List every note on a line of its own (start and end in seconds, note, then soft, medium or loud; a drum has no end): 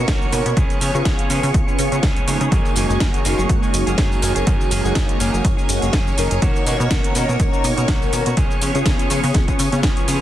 0.00 0.18 C#4 medium
0.00 0.18 D#4 medium
0.00 0.19 A#4 loud
0.00 2.51 C#5 medium
0.00 2.51 C#6 medium
0.08 0.26 B1 medium
0.08 0.31 D#3 medium
0.08 0.32 A#3 medium
0.08 0.32 C#4 loud
0.08 0.33 F#4 loud
0.08 kick loud
0.08 snare loud
0.08 closed hi-hat medium
0.08 cabasa soft
0.21 0.55 C#4 medium
0.21 0.56 D#4 medium
0.21 0.56 A#4 medium
0.21 cabasa soft
0.32 0.42 B2 loud
0.32 0.45 D#3 medium
0.32 0.46 A#3 medium
0.32 0.45 C#4 medium
0.32 0.44 F#4 medium
0.32 open hi-hat loud
0.32 cabasa medium
0.45 0.54 B2 loud
0.45 0.57 A#3 medium
0.45 0.57 C#4 medium
0.45 0.56 F#4 medium
0.45 closed hi-hat medium
0.45 cabasa soft
0.57 0.67 C#2 loud
0.57 0.79 F3 medium
0.57 0.80 B3 loud
0.57 0.81 C#4 medium
0.57 0.82 G#4 loud
0.57 kick loud
0.57 closed hi-hat medium
0.57 cabasa soft
0.70 closed hi-hat soft
0.70 cabasa soft
0.80 0.91 C#3 medium
0.80 0.94 F3 medium
0.80 0.95 B3 medium
0.80 0.94 C#4 medium
0.80 0.93 G#4 medium
0.80 open hi-hat loud
0.80 cabasa medium
0.94 1.03 C#3 loud
0.94 1.04 B3 loud
0.94 1.05 B3 medium
0.94 1.04 C#4 medium
0.94 1.05 C#4 medium
0.94 1.04 F4 medium
0.94 1.05 G#4 medium
0.94 1.04 G#4 loud
0.94 cabasa soft
1.05 1.15 C#2 medium
1.05 1.28 F3 medium
1.05 1.27 B3 medium
1.05 1.29 B3 loud
1.05 1.27 C#4 medium
1.05 1.30 C#4 loud
1.05 1.27 F4 medium
1.05 1.27 G#4 medium
1.05 1.31 G#4 loud
1.05 kick loud
1.05 snare loud
1.05 closed hi-hat medium
1.05 cabasa soft
1.19 closed hi-hat medium
1.19 cabasa soft
1.29 1.40 C#3 medium
1.29 1.43 F3 medium
1.29 1.76 B3 medium
1.29 1.43 B3 medium
1.29 1.76 C#4 medium
1.29 1.43 C#4 medium
1.29 1.76 F4 medium
1.29 1.76 G#4 medium
1.29 1.41 G#4 medium
1.29 open hi-hat loud
1.29 cabasa medium
1.43 1.51 C#3 loud
1.43 1.68 B3 medium
1.43 1.67 C#4 medium
1.43 1.66 G#4 medium
1.43 open hi-hat medium
1.43 cabasa soft
1.54 1.64 C#2 medium
1.54 kick loud
1.54 closed hi-hat medium
1.54 cabasa soft
1.67 1.93 B3 medium
1.67 1.92 C#4 medium
1.67 1.90 G#4 medium
1.67 cabasa soft
1.78 1.89 C#3 medium
1.78 1.90 B3 medium
1.78 1.90 C#4 medium
1.78 1.90 F4 medium
1.78 1.90 G#4 loud
1.78 open hi-hat loud
1.78 cabasa medium
1.91 2.00 C#3 medium
1.91 2.03 B3 medium
1.91 2.02 B3 medium
1.91 2.04 C#4 medium
1.91 2.03 C#4 medium
1.91 2.04 F4 medium
1.91 2.03 G#4 medium
1.91 2.04 G#4 medium
1.91 closed hi-hat soft
1.91 cabasa soft
2.03 2.22 C#2 medium
2.03 2.26 F3 medium
2.03 2.27 B3 medium
2.03 2.27 C#4 loud
2.03 2.28 G#4 loud
2.03 kick loud
2.03 snare loud
2.03 closed hi-hat medium
2.03 cabasa soft
2.16 closed hi-hat soft
2.16 cabasa soft
2.27 2.37 C#3 medium
2.27 2.40 F3 medium
2.27 2.86 G#3 medium
2.27 2.86 A#3 medium
2.27 2.41 B3 medium
2.27 2.40 C#4 medium
2.27 2.87 D#4 medium
2.27 2.87 F#4 medium
2.27 2.39 G#4 medium
2.27 open hi-hat loud
2.27 cabasa medium
2.40 2.49 C#3 medium
2.40 2.51 B3 soft
2.40 2.51 C#4 medium
2.40 2.51 G#4 medium
2.40 closed hi-hat medium
2.40 cabasa soft
2.51 2.62 F#2 loud
2.51 2.74 D#3 medium
2.51 2.75 A#3 loud
2.51 2.76 C#4 medium
2.51 2.77 G#4 loud
2.51 10.21 C#5 medium
2.51 10.21 C#6 medium
2.51 kick loud
2.51 closed hi-hat medium
2.51 tambourine medium
2.51 cabasa soft
2.65 tambourine soft
2.65 cabasa soft
2.75 2.86 F#1 medium
2.75 2.89 D#3 medium
2.75 2.90 A#3 medium
2.75 2.89 C#4 medium
2.75 2.88 G#4 medium
2.75 open hi-hat loud
2.75 tambourine medium
2.75 cabasa medium
2.89 2.98 F#1 loud
2.89 2.99 G#3 medium
2.89 2.99 A#3 medium
2.89 3.00 A#3 medium
2.89 3.00 C#4 medium
2.89 2.99 D#4 medium
2.89 2.99 F#4 medium
2.89 3.00 G#4 medium
2.89 tambourine soft
2.89 cabasa soft
3.00 3.10 F#2 medium
3.00 3.23 D#3 medium
3.00 3.22 G#3 medium
3.00 3.22 A#3 medium
3.00 3.24 A#3 medium
3.00 3.25 C#4 loud
3.00 3.23 D#4 medium
3.00 3.26 G#4 medium
3.00 kick loud
3.00 snare loud
3.00 closed hi-hat medium
3.00 tambourine soft
3.00 cabasa soft
3.14 closed hi-hat medium
3.14 cabasa soft
3.24 3.35 F#1 medium
3.24 3.38 D#3 medium
3.24 4.08 G#3 medium
3.24 4.08 A#3 medium
3.24 3.39 A#3 medium
3.24 3.38 C#4 medium
3.24 4.08 D#4 medium
3.24 4.09 F#4 loud
3.24 3.37 G#4 medium
3.24 open hi-hat loud
3.24 tambourine loud
3.24 cabasa medium
3.38 3.47 F#1 loud
3.38 3.64 A#3 soft
3.38 3.63 C#4 medium
3.38 3.61 G#4 medium
3.38 tambourine soft
3.38 cabasa soft
3.49 3.59 F#2 medium
3.49 kick loud
3.49 closed hi-hat medium
3.49 tambourine medium
3.49 cabasa soft
3.62 3.88 A#3 medium
3.62 3.87 C#4 medium
3.62 3.85 G#4 medium
3.62 tambourine soft
3.62 cabasa soft
3.74 3.84 F#1 loud
3.74 open hi-hat loud
3.74 tambourine medium
3.74 cabasa medium
3.86 3.95 F#1 medium
3.86 3.97 A#3 medium
3.86 3.98 C#4 medium
3.86 3.98 G#4 medium
3.86 closed hi-hat soft
3.86 tambourine soft
3.86 cabasa soft
3.98 4.17 F#2 medium
3.98 4.21 D#3 medium
3.98 4.22 A#3 medium
3.98 4.22 C#4 loud
3.98 4.23 G#4 loud
3.98 kick loud
3.98 snare loud
3.98 closed hi-hat medium
3.98 tambourine medium
3.98 cabasa soft
4.11 4.81 G#3 medium
4.11 4.81 A#3 medium
4.11 4.82 D#4 medium
4.11 4.82 F#4 medium
4.11 tambourine soft
4.11 cabasa soft
4.22 4.32 F#1 loud
4.22 4.36 D#3 medium
4.22 4.36 A#3 medium
4.22 4.35 C#4 medium
4.22 4.34 G#4 medium
4.22 open hi-hat loud
4.22 tambourine loud
4.22 cabasa medium
4.35 4.44 F#1 medium
4.35 4.46 A#3 soft
4.35 4.46 C#4 medium
4.35 4.47 G#4 medium
4.35 closed hi-hat soft
4.35 tambourine soft
4.35 cabasa soft
4.46 4.57 F#2 loud
4.46 4.69 D#3 medium
4.46 4.70 A#3 loud
4.46 4.71 C#4 loud
4.46 4.72 G#4 loud
4.46 kick loud
4.46 closed hi-hat medium
4.46 tambourine medium
4.46 cabasa soft
4.61 tambourine soft
4.61 cabasa soft
4.71 4.81 F#1 medium
4.71 4.84 D#3 medium
4.71 4.85 A#3 medium
4.71 4.84 C#4 medium
4.71 4.83 G#4 medium
4.71 open hi-hat loud
4.71 tambourine medium
4.71 cabasa medium
4.84 4.93 F#1 loud
4.84 4.94 G#3 medium
4.84 4.94 A#3 medium
4.84 4.95 A#3 medium
4.84 4.95 C#4 medium
4.84 4.94 D#4 medium
4.84 4.94 F#4 loud
4.84 4.95 G#4 medium
4.84 tambourine soft
4.84 cabasa soft
4.95 5.06 F#2 medium
4.95 5.18 D#3 medium
4.95 5.17 G#3 medium
4.95 5.17 A#3 medium
4.95 5.19 A#3 loud
4.95 5.20 C#4 loud
4.95 5.18 D#4 medium
4.95 5.20 G#4 loud
4.95 kick loud
4.95 snare loud
4.95 closed hi-hat medium
4.95 tambourine soft
4.95 cabasa soft
5.09 closed hi-hat medium
5.09 cabasa soft
5.19 5.30 F#1 medium
5.19 5.33 D#3 medium
5.19 5.66 G#3 medium
5.19 5.66 A#3 medium
5.19 5.34 A#3 medium
5.19 5.33 C#4 medium
5.19 5.66 D#4 medium
5.19 5.67 F#4 medium
5.19 5.31 G#4 medium
5.19 open hi-hat loud
5.19 tambourine medium
5.19 cabasa medium
5.32 5.42 F#1 loud
5.32 5.58 A#3 medium
5.32 5.57 C#4 medium
5.32 5.56 G#4 medium
5.32 tambourine soft
5.32 cabasa soft
5.45 5.54 F#2 medium
5.45 kick loud
5.45 closed hi-hat medium
5.45 tambourine medium
5.45 cabasa soft
5.57 5.83 A#3 medium
5.57 5.82 C#4 medium
5.57 5.80 G#4 medium
5.57 tambourine soft
5.57 cabasa soft
5.69 5.79 F#1 loud
5.69 5.80 G#3 medium
5.69 5.80 A#3 medium
5.69 5.80 D#4 medium
5.69 5.81 F#4 medium
5.69 open hi-hat loud
5.69 tambourine medium
5.69 cabasa medium
5.81 5.90 F#1 medium
5.81 5.94 G#3 medium
5.81 5.94 A#3 medium
5.81 5.92 A#3 soft
5.81 5.93 C#4 medium
5.81 5.94 D#4 medium
5.81 5.94 F#4 medium
5.81 5.93 G#4 medium
5.81 closed hi-hat soft
5.81 tambourine soft
5.81 cabasa soft
5.93 6.12 F#2 medium
5.93 6.16 D#3 medium
5.93 6.17 A#3 medium
5.93 6.17 C#4 loud
5.93 6.18 G#4 loud
5.93 kick loud
5.93 snare loud
5.93 closed hi-hat medium
5.93 tambourine medium
5.93 cabasa soft
6.07 tambourine soft
6.07 cabasa soft
6.17 6.28 F#1 loud
6.17 6.31 D#3 medium
6.17 6.31 A#3 medium
6.17 6.77 C#4 medium
6.17 6.30 C#4 medium
6.17 6.77 D#4 medium
6.17 6.29 G#4 medium
6.17 6.77 A#4 medium
6.17 open hi-hat loud
6.17 tambourine medium
6.17 cabasa medium
6.30 6.39 F#1 medium
6.30 6.41 A#3 medium
6.30 6.41 C#4 medium
6.30 6.42 G#4 medium
6.30 closed hi-hat medium
6.30 tambourine soft
6.30 cabasa soft
6.41 6.52 B1 loud
6.41 6.64 D#3 medium
6.41 6.65 A#3 medium
6.41 6.66 C#4 medium
6.41 6.67 F#4 loud
6.41 kick loud
6.41 closed hi-hat medium
6.41 tambourine medium
6.41 cabasa soft
6.56 tambourine soft
6.56 cabasa soft
6.66 6.76 B2 medium
6.66 6.79 D#3 medium
6.66 6.80 A#3 medium
6.66 6.79 C#4 medium
6.66 6.78 F#4 medium
6.66 open hi-hat loud
6.66 tambourine medium
6.66 cabasa medium
6.79 6.88 B2 loud
6.79 6.90 A#3 soft
6.79 6.89 B3 medium
6.79 6.89 C#4 medium
6.79 6.90 C#4 medium
6.79 6.89 D#4 medium
6.79 6.90 F#4 medium
6.79 6.90 A#4 medium
6.79 tambourine soft
6.79 cabasa soft
6.90 7.01 B1 medium
6.90 7.13 D#3 loud
6.90 7.14 A#3 loud
6.90 7.12 B3 medium
6.90 7.13 C#4 medium
6.90 7.15 C#4 loud
6.90 7.13 D#4 medium
6.90 7.16 F#4 loud
6.90 7.13 A#4 medium
6.90 kick loud
6.90 snare loud
6.90 closed hi-hat medium
6.90 tambourine soft
6.90 cabasa soft
7.04 closed hi-hat medium
7.04 cabasa soft
7.14 7.25 B2 medium
7.14 7.28 D#3 medium
7.14 7.29 A#3 medium
7.14 7.98 C#4 medium
7.14 7.28 C#4 medium
7.14 7.99 D#4 medium
7.14 7.26 F#4 medium
7.14 7.99 A#4 loud
7.14 open hi-hat loud
7.14 tambourine medium
7.14 cabasa medium
7.28 7.37 B2 loud
7.28 7.54 A#3 medium
7.28 7.52 C#4 medium
7.28 7.51 F#4 medium
7.28 tambourine soft
7.28 cabasa soft
7.40 7.50 B1 medium
7.40 kick loud
7.40 closed hi-hat medium
7.40 tambourine soft
7.40 cabasa soft
7.52 7.78 A#3 medium
7.52 7.77 C#4 medium
7.52 7.75 F#4 medium
7.52 tambourine soft
7.52 cabasa soft
7.64 7.74 B2 loud
7.64 open hi-hat loud
7.64 tambourine medium
7.64 cabasa medium
7.77 7.86 B2 medium
7.77 7.87 A#3 medium
7.77 7.88 C#4 medium
7.77 7.88 F#4 medium
7.77 closed hi-hat soft
7.77 tambourine soft
7.77 cabasa soft
7.88 8.07 B1 medium
7.88 8.11 D#3 medium
7.88 8.12 A#3 medium
7.88 8.13 C#4 loud
7.88 8.13 F#4 loud
7.88 kick loud
7.88 snare loud
7.88 closed hi-hat medium
7.88 tambourine medium
7.88 cabasa soft
8.02 8.36 C#4 medium
8.02 8.36 D#4 medium
8.02 8.36 A#4 medium
8.02 tambourine soft
8.02 cabasa soft
8.12 8.23 B2 loud
8.12 8.26 D#3 medium
8.12 8.26 A#3 medium
8.12 8.26 C#4 medium
8.12 8.24 F#4 medium
8.12 open hi-hat loud
8.12 tambourine medium
8.12 cabasa medium
8.25 8.34 B2 medium
8.25 8.37 A#3 medium
8.25 8.37 C#4 medium
8.25 8.37 F#4 medium
8.25 closed hi-hat medium
8.25 tambourine soft
8.25 cabasa soft
8.37 8.47 C#2 loud
8.37 8.60 F3 loud
8.37 8.61 B3 medium
8.37 8.61 C#4 medium
8.37 8.62 G#4 loud
8.37 kick loud
8.37 closed hi-hat medium
8.37 tambourine medium
8.37 cabasa soft
8.50 tambourine soft
8.50 cabasa soft
8.61 8.72 C#3 medium
8.61 8.75 F3 medium
8.61 8.75 B3 medium
8.61 8.74 C#4 medium
8.61 8.73 G#4 medium
8.61 open hi-hat loud
8.61 tambourine loud
8.61 cabasa medium
8.74 8.83 C#3 loud
8.74 8.84 B3 medium
8.74 8.85 B3 medium
8.74 8.84 C#4 medium
8.74 8.86 C#4 medium
8.74 8.84 F4 medium
8.74 8.86 G#4 medium
8.74 8.84 G#4 loud
8.74 closed hi-hat soft
8.74 tambourine soft
8.74 cabasa soft
8.86 8.96 C#2 medium
8.86 9.08 F3 medium
8.86 9.08 B3 medium
8.86 9.09 B3 loud
8.86 9.08 C#4 medium
8.86 9.10 C#4 loud
8.86 9.08 F4 medium
8.86 9.08 G#4 medium
8.86 9.11 G#4 loud
8.86 kick loud
8.86 snare loud
8.86 closed hi-hat medium
8.86 tambourine medium
8.86 cabasa soft
8.99 closed hi-hat medium
8.99 tambourine soft
8.99 cabasa soft
9.10 9.20 C#3 medium
9.10 9.23 F3 medium
9.10 9.56 B3 medium
9.10 9.24 B3 medium
9.10 9.56 C#4 medium
9.10 9.23 C#4 medium
9.10 9.57 F4 medium
9.10 9.57 G#4 medium
9.10 9.22 G#4 medium
9.10 open hi-hat loud
9.10 tambourine medium
9.10 cabasa medium
9.23 9.32 C#3 loud
9.23 9.49 B3 medium
9.23 9.48 C#4 medium
9.23 9.46 G#4 medium
9.23 open hi-hat medium
9.23 tambourine soft
9.23 cabasa soft
9.34 9.45 C#2 medium
9.34 kick loud
9.34 snare medium
9.34 closed hi-hat medium
9.34 tambourine medium
9.34 cabasa soft
9.47 9.73 B3 soft
9.47 9.72 C#4 medium
9.47 9.70 G#4 medium
9.47 kick medium
9.47 closed hi-hat soft
9.47 tambourine soft
9.47 cabasa soft
9.59 9.69 C#3 loud
9.59 open hi-hat loud
9.59 tambourine medium
9.59 cabasa medium
9.72 9.85 C#3 loud
9.72 9.81 B3 medium
9.72 9.82 B3 medium
9.72 9.81 C#4 medium
9.72 9.83 C#4 medium
9.72 9.81 F4 medium
9.72 9.83 G#4 medium
9.72 9.81 G#4 loud
9.72 closed hi-hat soft
9.72 tambourine soft
9.72 cabasa soft
9.83 9.93 C#2 medium
9.83 10.06 F3 medium
9.83 10.21 B3 medium
9.83 10.07 B3 medium
9.83 10.21 C#4 medium
9.83 10.08 C#4 loud
9.83 10.21 F4 medium
9.83 10.21 G#4 medium
9.83 10.09 G#4 loud
9.83 kick loud
9.83 snare loud
9.83 closed hi-hat medium
9.83 tambourine medium
9.83 cabasa soft
9.97 closed hi-hat soft
9.97 tambourine soft
9.97 cabasa soft
10.07 10.18 C#3 medium
10.07 10.21 F3 medium
10.07 10.21 B3 medium
10.07 10.21 C#4 medium
10.07 10.19 G#4 medium
10.07 open hi-hat loud
10.07 tambourine loud
10.07 cabasa medium